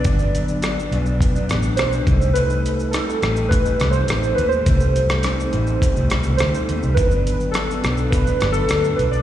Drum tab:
HH |x-x-x-x-x-x-x-x-|x-x-x-x-x-x-x-x-|x-x-x-x-x-x-x-x-|x-x-x-x-x-x-x-x-|
SH |xxxxxxxxxxxxxxxx|xxxxxxxxxxxxxxxx|xxxxxxxxxxxxxxxx|xxxxxxxxxxxxxxxx|
SD |----r-----r-r---|----r-r---r-r---|---rr-----r-r---|----r-r---r-r---|
BD |o-------o-----o-|--------o-------|o-------o-------|o-------o-------|